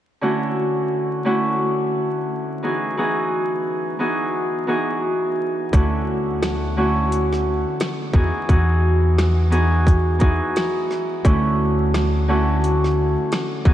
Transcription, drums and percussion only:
5.73 kick, closed hi-hat
6.43 snare, closed hi-hat
7.12 closed hi-hat
7.33 snare
7.80 snare, closed hi-hat
8.14 kick
8.49 kick, closed hi-hat
9.19 snare, closed hi-hat
9.52 closed hi-hat
9.87 kick, closed hi-hat
10.20 kick, closed hi-hat
10.56 snare, closed hi-hat
10.91 snare
11.25 kick, closed hi-hat
11.94 snare, closed hi-hat
12.64 closed hi-hat
12.84 snare
13.32 snare, closed hi-hat
13.65 kick

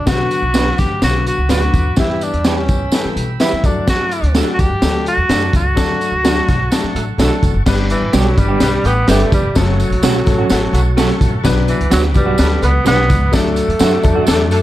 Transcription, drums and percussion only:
0.07 kick, snare, closed hi-hat, tambourine
0.31 closed hi-hat, tambourine
0.54 snare, closed hi-hat, tambourine
0.78 kick, snare, closed hi-hat, tambourine
1.02 snare, closed hi-hat, tambourine
1.27 closed hi-hat, tambourine
1.49 snare, closed hi-hat, tambourine
1.61 closed hi-hat
1.74 kick, closed hi-hat, tambourine
1.96 kick, snare, closed hi-hat, tambourine
2.21 closed hi-hat, tambourine
2.34 closed hi-hat
2.44 snare, closed hi-hat, tambourine
2.68 kick, closed hi-hat, tambourine
2.92 snare, closed hi-hat, tambourine
3.17 closed hi-hat, tambourine
3.40 snare, closed hi-hat, tambourine
3.64 kick, closed hi-hat, tambourine
3.87 kick, snare, closed hi-hat, tambourine
4.11 closed hi-hat, tambourine
4.24 closed hi-hat
4.35 snare, closed hi-hat, tambourine
4.59 kick, closed hi-hat, tambourine
4.82 snare, closed hi-hat, tambourine
5.06 closed hi-hat, tambourine
5.29 snare, closed hi-hat, tambourine
5.53 kick, closed hi-hat, tambourine
5.77 kick, snare, closed hi-hat, tambourine
6.01 closed hi-hat, tambourine
6.25 snare, closed hi-hat, tambourine
6.48 kick, snare, closed hi-hat, tambourine
6.72 snare, closed hi-hat, tambourine
6.96 closed hi-hat, tambourine
7.19 snare, closed hi-hat, tambourine
7.43 kick, closed hi-hat, tambourine
7.66 kick, snare, crash, tambourine
7.90 closed hi-hat, tambourine
8.13 snare, closed hi-hat, tambourine
8.37 kick, closed hi-hat, tambourine
8.60 snare, closed hi-hat, tambourine
8.85 closed hi-hat, tambourine
9.08 snare, closed hi-hat, tambourine
9.20 closed hi-hat
9.32 kick, closed hi-hat, tambourine
9.55 kick, snare, closed hi-hat, tambourine
9.80 closed hi-hat, tambourine
9.92 closed hi-hat
10.03 snare, closed hi-hat, tambourine
10.26 kick, snare, closed hi-hat, tambourine
10.49 snare, closed hi-hat, tambourine
10.74 closed hi-hat, tambourine
10.97 snare, closed hi-hat, tambourine
11.09 closed hi-hat
11.21 kick, closed hi-hat, tambourine
11.45 kick, snare, closed hi-hat, tambourine
11.68 closed hi-hat, tambourine
11.81 closed hi-hat
11.91 snare, closed hi-hat, tambourine
12.14 kick, closed hi-hat, tambourine
12.38 snare, closed hi-hat, tambourine
12.63 closed hi-hat, tambourine
12.86 snare, closed hi-hat, tambourine
13.10 kick, closed hi-hat, tambourine
13.33 kick, snare, closed hi-hat, tambourine
13.56 closed hi-hat, tambourine
13.70 closed hi-hat
13.79 snare, closed hi-hat, tambourine
14.03 kick, closed hi-hat, tambourine
14.27 snare, closed hi-hat, tambourine
14.51 closed hi-hat, tambourine

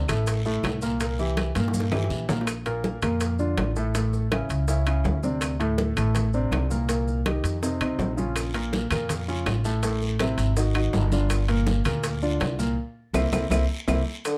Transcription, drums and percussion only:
0.08 high conga, low conga, high timbale, short guiro, claves, maracas
0.27 high bongo, high conga, high timbale, long guiro, maracas
0.45 high conga, maracas
0.64 high bongo, low bongo, high conga, high timbale, low timbale, short guiro, claves, maracas
0.82 high bongo, short guiro, maracas
1.00 high bongo, high conga, high timbale, long guiro, maracas
1.19 high bongo, high conga, maracas
1.37 high bongo, high conga, high timbale, low timbale, short guiro, claves, maracas
1.55 high bongo, high conga, high timbale, short guiro, maracas
1.68 high bongo
1.74 high conga, long guiro, maracas
1.80 high bongo
1.92 low bongo, low conga, high timbale, claves, maracas
2.04 low bongo
2.10 low conga, short guiro, maracas
2.29 low conga, low timbale, short guiro, maracas
2.41 low bongo
2.47 high bongo, high conga, high timbale, claves, maracas
2.66 high bongo, high conga, high timbale, maracas
2.84 high bongo, high conga, low timbale, maracas
3.02 high conga, low conga, high timbale, claves, maracas
3.20 high bongo, high conga, high timbale, maracas
3.39 high conga, maracas
3.58 high bongo, low bongo, high conga, high timbale, low timbale, claves, maracas
3.76 high bongo, maracas
3.95 high bongo, high conga, high timbale, maracas
4.13 high bongo, high conga, maracas
4.32 high bongo, high conga, high timbale, low timbale, claves, maracas
4.50 high conga, high timbale, maracas
4.68 high bongo, high conga, maracas
4.86 high conga, high timbale, claves, maracas
5.05 high bongo, low bongo, high conga, low timbale, maracas
5.23 high bongo, high conga, maracas
5.41 high bongo, high conga, high timbale, claves, maracas
5.60 high bongo, high conga, high timbale, maracas
5.78 high bongo, high conga, low timbale, maracas
5.97 high conga, low conga, high timbale, claves, maracas
6.15 high bongo, high conga, low conga, high timbale, maracas
6.33 high conga, maracas
6.52 high bongo, low bongo, high conga, high timbale, low timbale, claves, maracas
6.71 high bongo, high conga, maracas
6.89 high bongo, high conga, high timbale, maracas
7.08 high bongo, high conga, maracas
7.26 high bongo, high conga, high timbale, low timbale, claves, maracas
7.44 high conga, high timbale, maracas
7.63 high bongo, high conga, maracas
7.81 high conga, high timbale, claves, maracas
7.99 high bongo, low bongo, high conga, low timbale, maracas
8.18 high bongo, high conga, maracas
8.36 high bongo, high conga, high timbale, long guiro, claves, maracas
8.54 high bongo, high conga, high timbale, maracas
8.73 high bongo, high conga, low timbale, short guiro, maracas
8.91 high conga, low conga, high timbale, short guiro, claves, maracas
9.09 high bongo, high conga, low conga, high timbale, long guiro, maracas
9.28 high conga, maracas
9.46 high bongo, low bongo, high conga, high timbale, low timbale, short guiro, claves, maracas
9.64 high bongo, short guiro, maracas
9.83 high bongo, high conga, high timbale, long guiro, maracas
10.02 high bongo, high conga, maracas
10.19 high bongo, high conga, high timbale, low timbale, short guiro, claves, maracas
10.38 high conga, high timbale, short guiro, maracas
10.56 high bongo, high conga, long guiro, maracas
10.75 high conga, high timbale, claves, maracas
10.93 high bongo, low bongo, high conga, low timbale, short guiro, maracas
11.12 high bongo, high conga, short guiro, maracas
11.30 high bongo, high conga, high timbale, long guiro, claves, maracas
11.48 high bongo, high conga, high timbale, maracas
11.67 high bongo, high conga, low timbale, short guiro, maracas
11.85 high conga, low conga, high timbale, short guiro, claves, maracas
12.04 high bongo, high conga, high timbale, long guiro, maracas
12.22 high conga, maracas
12.40 high bongo, low bongo, high conga, high timbale, low timbale, short guiro, claves, maracas
12.59 high bongo, high conga, short guiro, maracas
13.14 low bongo, high conga, high timbale, long guiro, claves, maracas
13.32 low bongo, high conga, high timbale, claves, maracas
13.51 low bongo, high conga, high timbale, long guiro, claves, maracas
13.88 low bongo, high conga, high timbale, long guiro, claves, maracas
14.25 high bongo, high conga, high timbale, long guiro, claves, maracas

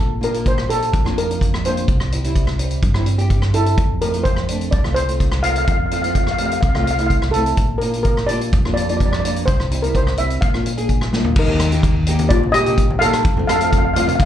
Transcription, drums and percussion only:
0.23 closed hi-hat
0.34 closed hi-hat
0.46 kick, closed hi-hat
0.58 cross-stick
0.70 closed hi-hat
0.82 closed hi-hat
0.93 kick, closed hi-hat
1.06 cross-stick
1.18 closed hi-hat
1.31 closed hi-hat
1.41 kick, closed hi-hat
1.54 cross-stick
1.65 closed hi-hat
1.77 closed hi-hat
1.88 kick, closed hi-hat
2.00 cross-stick
2.12 closed hi-hat
2.24 closed hi-hat
2.35 kick, closed hi-hat
2.47 cross-stick
2.59 closed hi-hat
2.71 closed hi-hat
2.83 kick, closed hi-hat
2.94 cross-stick
3.06 closed hi-hat
3.19 closed hi-hat
3.30 kick, closed hi-hat
3.42 cross-stick
3.54 closed hi-hat
3.66 closed hi-hat
3.78 kick, closed hi-hat
4.01 closed hi-hat
4.14 closed hi-hat
4.25 kick, closed hi-hat
4.36 cross-stick
4.48 closed hi-hat
4.61 closed hi-hat
4.72 kick, closed hi-hat
4.84 cross-stick
4.96 closed hi-hat
5.09 closed hi-hat
5.20 kick, closed hi-hat
5.32 cross-stick
5.43 closed hi-hat
5.56 closed hi-hat
5.67 kick, closed hi-hat
5.91 closed hi-hat
6.04 closed hi-hat
6.15 kick, closed hi-hat
6.27 cross-stick
6.38 closed hi-hat
6.51 closed hi-hat
6.62 kick, closed hi-hat
6.75 cross-stick
6.87 closed hi-hat
6.99 closed hi-hat
7.10 kick, closed hi-hat
7.22 cross-stick
7.34 closed hi-hat
7.46 closed hi-hat
7.57 kick, closed hi-hat
7.81 closed hi-hat
7.93 closed hi-hat
8.04 kick, closed hi-hat
8.17 cross-stick
8.29 closed hi-hat
8.41 closed hi-hat
8.53 kick, closed hi-hat
8.65 cross-stick
8.77 closed hi-hat
8.89 closed hi-hat
9.00 kick, closed hi-hat
9.13 cross-stick
9.25 closed hi-hat
9.36 closed hi-hat
9.48 kick, closed hi-hat
9.60 cross-stick
9.71 closed hi-hat
9.84 closed hi-hat
9.95 kick, closed hi-hat
10.07 cross-stick
10.17 closed hi-hat
10.30 closed hi-hat
10.42 kick, closed hi-hat
10.54 cross-stick
10.66 closed hi-hat
10.78 closed hi-hat
10.89 kick, closed hi-hat
11.01 cross-stick
11.13 snare
11.24 floor tom
11.36 kick, crash
11.49 high conga
11.60 cross-stick, closed hi-hat
11.72 closed hi-hat
11.83 kick, closed hi-hat
12.06 closed hi-hat
12.19 closed hi-hat, high conga
12.30 kick, closed hi-hat
12.43 high conga
12.54 cross-stick, closed hi-hat
12.66 closed hi-hat, high conga
12.78 kick, closed hi-hat
12.90 low conga
13.01 closed hi-hat, low conga
13.13 cross-stick, closed hi-hat
13.25 kick, closed hi-hat
13.37 high conga
13.49 cross-stick, closed hi-hat
13.61 closed hi-hat
13.73 kick, closed hi-hat
13.96 closed hi-hat, low conga
14.08 closed hi-hat, high conga
14.20 kick, closed hi-hat

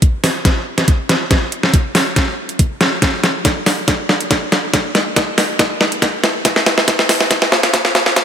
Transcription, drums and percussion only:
0.02 kick, closed hi-hat
0.24 snare, open hi-hat
0.45 kick, snare, closed hi-hat
0.78 snare, closed hi-hat
0.88 kick, closed hi-hat
1.09 snare, closed hi-hat
1.31 kick, snare, closed hi-hat
1.52 closed hi-hat
1.63 snare
1.74 kick, closed hi-hat
1.95 snare, open hi-hat
2.16 kick, snare, closed hi-hat
2.49 closed hi-hat
2.59 kick, closed hi-hat
2.81 snare, closed hi-hat
3.02 kick, snare, closed hi-hat
3.24 snare, closed hi-hat
3.45 kick, snare, closed hi-hat
3.66 snare, open hi-hat
3.88 kick, snare, closed hi-hat
4.09 snare
4.21 closed hi-hat
4.31 kick, snare, closed hi-hat
4.52 snare, closed hi-hat
4.74 kick, snare, closed hi-hat
4.95 snare, closed hi-hat
5.16 kick, snare, closed hi-hat
5.38 snare, open hi-hat
5.59 kick, snare, closed hi-hat
5.81 snare
5.92 closed hi-hat
6.02 kick, snare, closed hi-hat
6.24 snare, closed hi-hat
6.45 kick, snare, closed hi-hat
6.56 snare
6.66 snare, closed hi-hat
6.78 snare
6.88 kick, snare, closed hi-hat
6.99 snare
7.09 snare, open hi-hat
7.21 snare
7.31 kick, snare, closed hi-hat
7.42 snare
7.52 snare
7.63 snare, closed hi-hat
7.74 kick, snare, closed hi-hat
7.85 snare
7.95 snare, closed hi-hat
8.06 snare
8.16 kick, snare, closed hi-hat

